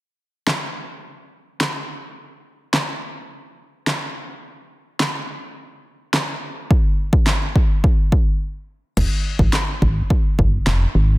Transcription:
0.47 snare, clap
1.61 snare, clap
2.74 snare, clap
3.87 snare, clap
5.00 snare, clap
6.14 snare, clap
6.71 kick
7.13 kick
7.26 snare, clap
7.56 kick
7.84 kick
8.12 kick
8.97 fm bass F1, kick, crash
9.39 fm bass G#1, kick
9.53 snare, clap
9.82 fm bass G#1, kick
10.10 kick
10.39 fm bass G1, kick
10.67 fm bass F1, snare, clap
10.95 fm bass G#1

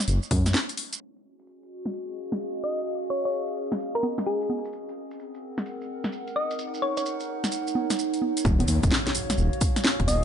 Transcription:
0.00 maracas
0.08 detuned saw bass F#1, closed hi-hat, maracas
0.23 maracas
0.31 detuned saw bass F#2, kick, open hi-hat
0.46 snare, closed hi-hat, maracas
0.54 snare, maracas
0.69 closed hi-hat, maracas
0.77 open hi-hat
0.93 closed hi-hat, maracas
1.01 ambient pad C#4, closed hi-hat, maracas
1.16 ambient pad F#4, maracas
1.29 ambient pad G#4
1.39 closed hi-hat, maracas
1.45 ambient pad D#5, maracas
1.62 closed hi-hat, maracas
1.86 snare, closed hi-hat, maracas
1.93 closed hi-hat, maracas
2.00 ambient pad F5
2.09 maracas
2.32 snare, closed hi-hat, maracas
2.41 maracas
2.55 closed hi-hat, maracas
2.64 synth pluck D#5
2.78 closed hi-hat, maracas
2.87 closed hi-hat, maracas
3.02 maracas
3.10 synth pluck C#5
3.25 synth pluck C#5, closed hi-hat, maracas
3.34 maracas
3.48 closed hi-hat, maracas
3.72 snare, closed hi-hat, maracas
3.80 closed hi-hat, maracas
3.95 synth pluck A#4, maracas
4.03 high conga
4.18 snare, closed hi-hat, maracas
4.26 synth pluck G#4, maracas
4.42 closed hi-hat, maracas
4.50 high conga
4.65 closed hi-hat, maracas
4.73 ambient pad C4, closed hi-hat, maracas
4.89 maracas
5.11 ambient pad A#4 F#5, closed hi-hat, maracas
5.19 maracas
5.34 closed hi-hat, maracas
5.58 snare, closed hi-hat, maracas
5.66 closed hi-hat, maracas
5.81 maracas
6.04 snare, closed hi-hat, maracas
6.13 maracas
6.28 closed hi-hat, maracas
6.36 ambient pad D#4, synth pluck D#5
6.51 closed hi-hat, maracas
6.59 closed hi-hat, maracas
6.65 ambient pad C#5
6.74 maracas
6.82 synth pluck C#5
6.97 synth pluck C#5, closed hi-hat, maracas
7.06 maracas
7.20 closed hi-hat, maracas
7.44 snare, closed hi-hat, maracas
7.52 closed hi-hat, maracas
7.67 maracas
7.75 high conga
7.90 snare, closed hi-hat, maracas
7.99 maracas
8.14 closed hi-hat, maracas
8.22 high conga
8.37 closed hi-hat, maracas
8.45 detuned saw bass D#1, ambient pad F#4, kick, impact, maracas
8.60 closed hi-hat, high conga
8.68 detuned saw bass D#2, open hi-hat, maracas
8.83 detuned saw bass D#1, kick, closed hi-hat, maracas
8.91 snare, maracas
9.01 ambient pad F5
9.07 snare, closed hi-hat
9.15 open hi-hat, maracas
9.29 ambient pad G#5, snare, closed hi-hat, maracas
9.38 detuned saw bass D#1, maracas
9.53 closed hi-hat
9.61 kick, open hi-hat, maracas
9.76 snare, closed hi-hat, maracas
9.84 snare, maracas
10.00 detuned saw bass D#1, kick, closed hi-hat
10.08 synth pluck D#5, open hi-hat, high conga, maracas

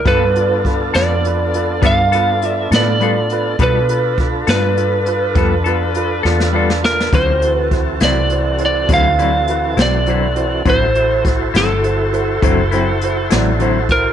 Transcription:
0.05 fingered electric bass G2, clean electric guitar G3 B3 F4 A4, tonewheel organ B3 D4 F4 A4, grand piano F4 A4 B4, electric slide guitar B4, kick, closed hi-hat
0.36 grand piano F4 A4 D5, closed hi-hat
0.65 grand piano F4 A4 B4, kick, closed hi-hat
0.94 fingered electric bass F2, clean electric guitar B3 F4 A4, grand piano F4 A4 B4, electric slide guitar D5, snare, closed hi-hat
1.25 grand piano F4 A4 B4, closed hi-hat
1.54 grand piano F4 A4 B4, closed hi-hat
1.82 fingered electric bass G2, clean electric guitar G3 B3 F4 A4, grand piano F4 A4 D5, kick, closed hi-hat
1.87 electric slide guitar F5
2.12 clean electric guitar B3 F4 A4, grand piano F4 A4 B4, closed hi-hat
2.42 grand piano F4 A4 D5, electric slide guitar E5, closed hi-hat
2.71 fingered electric bass A2, clean electric guitar B3 F4 A4, grand piano F4 A4 B4, snare, closed hi-hat
2.76 electric slide guitar D5
3.00 clean electric guitar G3 B3 F4 A4, grand piano F4 A4 B4, closed hi-hat
3.29 grand piano F4 A4 B4, closed hi-hat
3.59 fingered electric bass B2, clean electric guitar G3 B3 F4 A4, tonewheel organ D4 F4 A4 B4, grand piano F4 A4 B4, kick, closed hi-hat
3.63 electric slide guitar B4
3.89 grand piano F4 A4 B4, closed hi-hat
4.18 grand piano F4 A4 B4, kick, closed hi-hat
4.47 fingered electric bass G2, clean electric guitar B3 F4 A4, grand piano F4 A4 D5, electric slide guitar B4, snare, closed hi-hat
4.77 grand piano F4 A4 B4, closed hi-hat
5.06 grand piano F4 A4 B4, closed hi-hat
5.35 fingered electric bass F2, clean electric guitar G3 B3 F4 A4, grand piano F4 A4 B4, kick, closed hi-hat
5.64 clean electric guitar B3 F4 A4, grand piano F4 A4 B4, closed hi-hat
5.94 grand piano F4 A4 B4, closed hi-hat
6.23 fingered electric bass E2, clean electric guitar B3 F4 A4, grand piano F4 A4 D5, snare
6.40 snare
6.53 clean electric guitar G3 B3 F4 A4, grand piano F4 A4 D5
6.70 snare
6.83 grand piano F4 A4 D5, electric slide guitar A#4, snare
7.00 snare
7.12 fingered electric bass D2, clean electric guitar D3 F#3 C4 E4, tonewheel organ C#4 F4 G4 A#4, grand piano E4 F#4 C5, electric slide guitar C5, kick, closed hi-hat
7.41 tonewheel organ E3 C4 F#4 A4, grand piano E4 F#4 C5, closed hi-hat
7.54 electric slide guitar B4
7.71 grand piano E4 F#4 C5, kick, closed hi-hat
8.00 fingered electric bass C2, clean electric guitar C4 E4, grand piano E4 F#4 C5, snare, closed hi-hat
8.04 clean electric guitar F#3, electric slide guitar D5
8.30 grand piano E4 F#4 C5, closed hi-hat
8.58 grand piano E4 F#4 C5, closed hi-hat
8.66 electric slide guitar D5
8.89 fingered electric bass D2, clean electric guitar D3 F#3 C4 E4, grand piano E4 F#4 C5, kick, closed hi-hat
8.94 electric slide guitar F5
9.18 clean electric guitar F#3 C4 E4, grand piano E4 F#4 D5, closed hi-hat
9.47 grand piano E4 F#4 B4, closed hi-hat
9.77 fingered electric bass B1, clean electric guitar F#3 C4 E4, grand piano E4 F#4 C5, snare, closed hi-hat
9.82 electric slide guitar D5
10.06 clean electric guitar D3 F#3 C4 E4, grand piano E4 F#4 C5, closed hi-hat
10.36 grand piano E4 F#4 C5, closed hi-hat
10.65 fingered electric bass A1, clean electric guitar D3 F#3 C4 E4, grand piano E4 F#4 C5, tonewheel organ E4 F#4 A4 C5, kick, closed hi-hat
10.70 electric slide guitar C5
10.95 grand piano E4 F#4 C5, closed hi-hat
11.25 grand piano E4 F#4 C5, kick, snare, closed hi-hat
11.54 fingered electric bass G1, clean electric guitar F#3 C4 E4, grand piano E4 F#4 A4, electric slide guitar A4, snare, closed hi-hat
11.84 grand piano E4 F#4 C5, closed hi-hat
12.12 grand piano E4 F#4 C5, closed hi-hat
12.42 fingered electric bass F#1, clean electric guitar D3 F#3 C4 E4, grand piano E4 F#4 C5, kick, closed hi-hat
12.71 clean electric guitar F#3 C4 E4, grand piano E4 F#4 C5, closed hi-hat
13.01 grand piano E4 F#4 C5, closed hi-hat
13.30 fingered electric bass A1, clean electric guitar F#3 C4 E4, grand piano E4 F#4 D5, snare, closed hi-hat
13.59 clean electric guitar D3 F#3 C4 E4, grand piano E4 F#4 C5, closed hi-hat
13.89 grand piano E4 F#4 C5, electric slide guitar A#4, kick, closed hi-hat

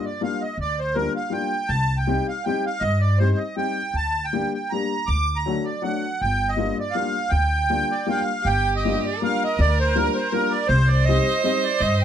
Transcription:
0.05 accordion D5
0.21 upright piano G3 A#3 D4 F4, accordion F5
0.42 accordion D#5
0.58 upright bass D2, accordion D5
0.79 accordion C5
0.95 upright piano G3 A#3 D4 F4, accordion A#4
1.16 accordion F5
1.30 upright piano G3 A#3 D4 F4, accordion G5
1.68 upright bass C2, accordion A5
1.97 accordion G5
2.07 upright piano G3 C4 D#4 G4
2.28 accordion F5
2.45 upright piano G3 C4 D#4 G4, accordion G5
2.66 accordion F5
2.80 upright bass G2, accordion D#5
3.01 accordion D5
3.18 upright piano G3 C4 D#4 G4, accordion C5
3.36 accordion D#5
3.57 upright piano G3 C4 D#4 G4, accordion G5
3.94 upright bass D2, accordion A5
4.25 accordion G5
4.33 upright piano G3 A#3 D4 G4
4.54 accordion G5
4.70 upright piano G3 A#3 D4, accordion A#5
4.75 upright piano G4
5.07 upright bass D2, accordion D6
5.36 accordion A#5
5.46 upright piano F#3 A3 D4 F#4
5.65 accordion D5
5.82 upright piano F#3 A3 D4 F#4, accordion F#5
6.21 upright bass G1, accordion G5
6.49 accordion D#5
6.57 upright piano G3 A#3 D4 F4
6.80 accordion D5
6.91 accordion F5
6.95 upright piano G3 A#3 D4 F4
7.30 upright bass D2, accordion G5
7.70 upright piano G3 A#3 D4 F4
7.91 accordion D5
8.06 upright piano G3 A#3 D4 F4, accordion F5
8.42 upright bass G1, violin G4
8.47 accordion G5
8.76 accordion D#5
8.85 upright piano G3 A#3 D4 F4
9.05 accordion D5
9.19 upright piano G3 A#3, violin A#4
9.23 upright piano D4 F4, accordion F5
9.44 accordion D#5
9.59 upright bass D2, accordion D5
9.80 accordion C5
9.96 upright piano G3 A#3 D4 F4, accordion A#4
10.15 accordion C5
10.31 upright piano G3 A#3 D4 F4, accordion A#4
10.51 accordion D5
10.68 upright bass C2, accordion C5, violin C5
10.88 accordion D5
11.05 upright piano G3 C4, accordion D#5
11.09 upright piano D#4 G4
11.44 upright piano G3 C4 D#4 G4, accordion D#5
11.64 accordion D5
11.80 upright bass G2, accordion D#5

